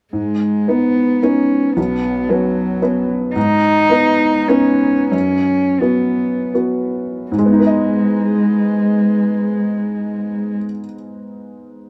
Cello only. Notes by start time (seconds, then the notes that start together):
0.13 G#3
0.69 B3
1.23 C#4
1.77 B3
2.29 F#3
3.36 D#4
4.48 C#4
5.11 C#4
5.80 B3
7.32 G#3